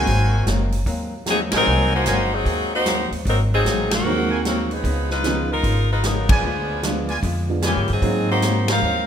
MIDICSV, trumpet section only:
0, 0, Header, 1, 2, 480
1, 0, Start_track
1, 0, Tempo, 397614
1, 87, Time_signature, 4, 2, 24, 8
1, 10944, End_track
2, 0, Start_track
2, 0, Title_t, "Trumpet section"
2, 0, Program_c, 0, 61
2, 0, Note_on_c, 0, 66, 97
2, 0, Note_on_c, 0, 70, 76
2, 0, Note_on_c, 0, 72, 86
2, 0, Note_on_c, 0, 80, 100
2, 533, Note_off_c, 0, 70, 0
2, 533, Note_off_c, 0, 72, 0
2, 534, Note_off_c, 0, 66, 0
2, 534, Note_off_c, 0, 80, 0
2, 1839, Note_on_c, 0, 72, 83
2, 1841, Note_on_c, 0, 70, 87
2, 1841, Note_on_c, 0, 80, 98
2, 1842, Note_on_c, 0, 66, 93
2, 2455, Note_off_c, 0, 72, 0
2, 2456, Note_off_c, 0, 70, 0
2, 2456, Note_off_c, 0, 80, 0
2, 2457, Note_off_c, 0, 66, 0
2, 2483, Note_on_c, 0, 70, 70
2, 2483, Note_on_c, 0, 72, 67
2, 2485, Note_on_c, 0, 80, 82
2, 2486, Note_on_c, 0, 66, 83
2, 2695, Note_off_c, 0, 70, 0
2, 2695, Note_off_c, 0, 72, 0
2, 2696, Note_off_c, 0, 80, 0
2, 2697, Note_off_c, 0, 66, 0
2, 5198, Note_on_c, 0, 70, 65
2, 5199, Note_on_c, 0, 80, 73
2, 5200, Note_on_c, 0, 66, 71
2, 5200, Note_on_c, 0, 72, 64
2, 5314, Note_off_c, 0, 70, 0
2, 5314, Note_off_c, 0, 80, 0
2, 5315, Note_off_c, 0, 66, 0
2, 5315, Note_off_c, 0, 72, 0
2, 7599, Note_on_c, 0, 74, 84
2, 7600, Note_on_c, 0, 65, 84
2, 7600, Note_on_c, 0, 71, 78
2, 7600, Note_on_c, 0, 80, 98
2, 8215, Note_off_c, 0, 74, 0
2, 8216, Note_off_c, 0, 65, 0
2, 8216, Note_off_c, 0, 71, 0
2, 8216, Note_off_c, 0, 80, 0
2, 8556, Note_on_c, 0, 74, 73
2, 8558, Note_on_c, 0, 65, 83
2, 8558, Note_on_c, 0, 71, 70
2, 8559, Note_on_c, 0, 80, 85
2, 8672, Note_off_c, 0, 74, 0
2, 8673, Note_off_c, 0, 71, 0
2, 8674, Note_off_c, 0, 65, 0
2, 8674, Note_off_c, 0, 80, 0
2, 9206, Note_on_c, 0, 74, 63
2, 9208, Note_on_c, 0, 71, 62
2, 9209, Note_on_c, 0, 80, 70
2, 9211, Note_on_c, 0, 65, 69
2, 9417, Note_off_c, 0, 74, 0
2, 9418, Note_off_c, 0, 71, 0
2, 9419, Note_off_c, 0, 65, 0
2, 9419, Note_off_c, 0, 80, 0
2, 10944, End_track
0, 0, End_of_file